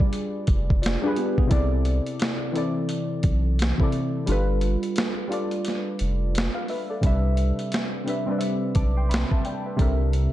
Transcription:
0.00 1.02 G3 medium
0.00 1.03 D4 medium
0.00 1.05 F4 medium
0.00 1.06 G#4 medium
0.00 1.07 B4 loud
0.00 0.85 D5 medium
0.00 kick loud
0.13 closed hi-hat medium
0.47 0.97 F1 loud
0.47 kick loud
0.47 closed hi-hat medium
0.70 kick loud
0.82 1.03 F4 medium
0.82 1.03 D5 medium
0.82 snare loud
0.82 closed hi-hat medium
1.02 1.45 G3 medium
1.02 1.46 D4 medium
1.02 1.17 D4 medium
1.02 1.47 F4 medium
1.02 1.16 B4 medium
1.06 1.47 G#4 medium
1.06 1.48 B4 loud
1.16 1.38 B3 medium
1.16 1.37 G4 medium
1.16 closed hi-hat medium
1.38 1.72 B3 medium
1.38 1.71 G#4 medium
1.38 kick medium
1.47 2.42 C3 medium
1.47 2.43 C4 medium
1.47 2.43 E4 medium
1.47 closed hi-hat loud
1.51 2.01 C2 loud
1.51 2.44 A4 medium
1.51 2.45 D5 loud
1.51 kick loud
1.85 closed hi-hat medium
2.07 closed hi-hat soft
2.20 snare medium
2.20 closed hi-hat medium
2.52 3.58 E3 medium
2.52 3.59 C4 medium
2.52 3.59 E4 medium
2.52 3.60 A4 medium
2.52 closed hi-hat medium
2.58 3.61 D5 medium
2.89 closed hi-hat medium
3.23 3.73 B1 loud
3.23 kick loud
3.23 closed hi-hat medium
3.59 snare loud
3.59 closed hi-hat medium
3.78 4.21 C3 medium
3.78 4.22 C4 medium
3.78 4.22 E4 medium
3.78 4.23 A4 medium
3.78 kick medium
3.83 4.24 D5 medium
3.92 closed hi-hat medium
4.26 4.77 G1 loud
4.26 5.20 G3 medium
4.26 5.20 D4 medium
4.26 5.21 F4 medium
4.26 closed hi-hat loud
4.30 5.22 A4 medium
4.30 5.22 B4 loud
4.61 closed hi-hat medium
4.83 closed hi-hat soft
4.96 snare loud
4.96 closed hi-hat medium
5.28 6.34 G3 medium
5.28 6.34 D4 medium
5.28 6.35 F4 medium
5.28 6.00 A4 medium
5.32 6.01 D5 medium
5.32 closed hi-hat medium
5.51 closed hi-hat soft
5.65 snare soft
5.65 closed hi-hat medium
5.99 6.50 F1 medium
5.99 closed hi-hat medium
6.35 snare loud
6.35 closed hi-hat medium
6.55 6.68 B4 soft
6.55 6.67 F5 medium
6.68 6.90 B4 medium
6.68 6.90 E5 medium
6.68 open hi-hat soft
6.90 7.23 A4 medium
6.90 7.23 D5 medium
7.01 7.53 C2 loud
7.01 7.95 C3 medium
7.01 7.96 G3 medium
7.01 7.96 D4 medium
7.01 7.97 B4 medium
7.01 kick loud
7.01 closed hi-hat loud
7.06 7.98 E5 loud
7.37 closed hi-hat medium
7.59 closed hi-hat soft
7.72 snare medium
7.72 closed hi-hat medium
8.04 8.24 C3 medium
8.04 8.25 G3 medium
8.04 8.25 D4 medium
8.04 closed hi-hat medium
8.08 8.26 B4 medium
8.08 8.27 E5 medium
8.26 9.43 G3 medium
8.26 9.42 C4 medium
8.26 9.44 D4 medium
8.31 8.77 B4 medium
8.31 8.35 D5 medium
8.39 8.81 E5 medium
8.39 closed hi-hat medium
8.75 9.25 B1 medium
8.75 8.96 A5 soft
8.75 8.96 D6 medium
8.75 kick loud
8.75 closed hi-hat medium
8.97 9.10 G5 medium
8.97 9.09 C6 medium
9.09 9.31 E5 medium
9.09 9.30 B5 medium
9.09 closed hi-hat medium
9.14 snare loud
9.31 9.44 E5 medium
9.31 9.44 A5 medium
9.31 kick medium
9.45 9.66 D5 medium
9.45 9.66 G5 medium
9.45 closed hi-hat medium
9.66 9.99 B4 medium
9.66 9.81 E5 medium
9.77 10.28 C2 loud
9.77 10.33 C3 loud
9.77 10.33 G3 medium
9.77 10.33 D4 medium
9.77 10.33 A4 medium
9.77 kick loud
9.77 closed hi-hat loud
9.81 10.33 A#4 medium
9.81 10.33 E5 medium
10.13 closed hi-hat medium

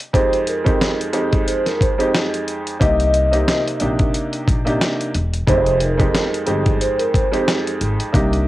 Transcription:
0.00 closed hi-hat medium
0.13 0.61 F2 medium
0.13 0.61 G#3 medium
0.13 0.61 C4 medium
0.13 0.62 D#4 medium
0.13 0.62 G4 medium
0.13 0.44 C5 loud
0.13 kick loud
0.13 closed hi-hat medium
0.33 closed hi-hat medium
0.47 0.96 A#4 medium
0.47 closed hi-hat medium
0.64 1.10 F2 medium
0.64 1.10 G#3 medium
0.64 1.10 C4 medium
0.64 1.10 D#4 medium
0.64 1.10 G4 loud
0.64 kick loud
0.64 closed hi-hat medium
0.81 snare loud
0.81 closed hi-hat medium
1.01 closed hi-hat medium
1.13 1.91 F2 medium
1.13 1.91 G#3 medium
1.13 1.91 C4 medium
1.13 1.92 D#4 medium
1.13 1.92 G4 medium
1.13 closed hi-hat medium
1.33 kick medium
1.33 closed hi-hat soft
1.47 1.63 C5 medium
1.47 closed hi-hat loud
1.66 1.79 A#4 medium
1.66 snare soft
1.66 closed hi-hat medium
1.81 2.11 C5 medium
1.81 kick loud
1.81 closed hi-hat medium
1.98 2.74 F2 medium
1.98 2.74 G#3 medium
1.98 2.75 C4 medium
1.98 2.75 D#4 medium
1.98 2.75 G4 loud
1.98 closed hi-hat medium
2.15 snare loud
2.15 closed hi-hat medium
2.34 closed hi-hat medium
2.48 closed hi-hat medium
2.67 closed hi-hat medium
2.79 3.40 C2 loud
2.79 3.27 C3 medium
2.79 3.27 A#3 medium
2.79 3.28 C4 medium
2.79 3.28 D#4 medium
2.79 3.28 G4 loud
2.79 3.62 D#5 loud
2.79 kick loud
2.79 closed hi-hat loud
3.00 closed hi-hat medium
3.14 closed hi-hat medium
3.31 3.77 C3 medium
3.31 3.77 A#3 medium
3.31 3.77 C4 medium
3.31 3.77 D#4 medium
3.31 3.77 G4 medium
3.31 closed hi-hat medium
3.48 snare loud
3.48 closed hi-hat medium
3.68 closed hi-hat medium
3.80 4.11 A#1 medium
3.80 4.58 C3 medium
3.80 4.58 A#3 medium
3.80 4.58 D4 medium
3.80 4.58 D#4 medium
3.80 4.59 G4 medium
3.80 closed hi-hat medium
3.99 kick medium
3.99 closed hi-hat soft
4.14 closed hi-hat loud
4.33 closed hi-hat medium
4.48 4.77 A#1 medium
4.48 kick loud
4.48 closed hi-hat medium
4.65 5.10 C3 medium
4.65 5.10 A#3 medium
4.65 5.10 D4 medium
4.65 5.11 D#4 medium
4.65 5.11 G4 loud
4.65 closed hi-hat medium
4.81 snare loud
4.81 closed hi-hat medium
5.01 closed hi-hat medium
5.14 5.44 E1 loud
5.14 closed hi-hat medium
5.33 closed hi-hat medium
5.47 6.07 F1 loud
5.47 5.94 F2 loud
5.47 5.95 G#3 medium
5.47 5.95 C4 medium
5.47 5.95 D#4 medium
5.47 5.95 G4 medium
5.47 5.77 C5 loud
5.47 kick loud
5.47 closed hi-hat medium
5.66 closed hi-hat medium
5.80 6.29 A#4 medium
5.80 closed hi-hat medium
5.97 6.43 F2 medium
5.97 6.43 G#3 medium
5.97 6.43 C4 medium
5.97 6.44 D#4 medium
5.97 6.44 G4 loud
5.97 kick loud
5.97 closed hi-hat medium
6.15 snare loud
6.15 closed hi-hat medium
6.34 closed hi-hat medium
6.46 6.77 G1 medium
6.46 7.24 F2 medium
6.46 7.25 G#3 medium
6.46 7.25 C4 medium
6.46 7.25 D#4 medium
6.46 7.25 G4 medium
6.46 closed hi-hat medium
6.66 kick medium
6.66 closed hi-hat soft
6.81 6.97 C5 medium
6.81 closed hi-hat loud
6.99 7.12 A#4 medium
6.99 closed hi-hat medium
7.14 7.44 C5 medium
7.14 kick loud
7.14 closed hi-hat medium
7.32 8.08 F2 medium
7.32 8.08 G#3 medium
7.32 8.08 C4 medium
7.32 8.08 D#4 medium
7.32 8.08 G4 loud
7.32 closed hi-hat medium
7.48 snare loud
7.48 closed hi-hat medium
7.67 closed hi-hat medium
7.81 7.97 G#1 medium
7.81 closed hi-hat medium
8.00 closed hi-hat medium
8.12 8.48 C2 loud
8.12 8.48 C3 loud
8.12 8.48 A#3 medium
8.12 8.48 D4 medium
8.12 8.48 D#4 medium
8.12 8.48 G4 loud
8.12 kick loud
8.12 closed hi-hat loud
8.33 closed hi-hat medium

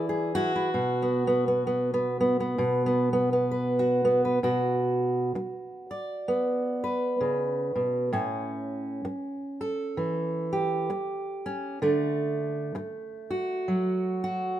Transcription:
0.00 0.72 E3 medium
0.00 0.35 E4 soft
0.00 0.35 D5 soft
0.09 0.69 G#4 soft
0.35 0.54 E4 medium
0.35 3.78 F#4 loud
0.56 0.69 E4 soft
0.74 2.57 B2 medium
1.02 1.26 B3 soft
1.27 1.46 B3 medium
1.48 1.66 B3 soft
1.67 1.92 B3 soft
1.94 2.19 B3 soft
2.20 2.39 B3 medium
2.40 2.85 B3 soft
2.58 4.42 B2 medium
2.86 3.12 B3 soft
3.13 3.31 B3 medium
3.33 4.04 B3 soft
3.51 4.24 B4 soft
3.79 4.39 F#4 soft
4.05 4.38 B3 medium
4.25 4.38 B4 soft
4.43 5.35 B2 medium
4.43 8.09 F#4 medium
5.35 muted steel-string acoustic guitar stroke medium
5.91 8.09 D5 soft
6.28 8.08 B3 medium
6.84 8.09 B4 medium
7.21 7.75 C#3 medium
7.76 8.13 B2 medium
8.13 9.04 A2 medium
8.13 11.45 C#4 medium
9.05 muted steel-string acoustic guitar stroke medium
9.61 11.79 A4 medium
9.97 10.89 E3 medium
10.53 11.78 G4 medium
10.90 muted steel-string acoustic guitar stroke medium
11.46 11.79 C#4 medium
11.82 12.74 D3 medium
11.82 14.60 A3 medium
12.75 muted steel-string acoustic guitar stroke medium
13.30 14.22 F#4 medium
13.68 14.60 F#3 medium
14.24 14.60 F#4 medium

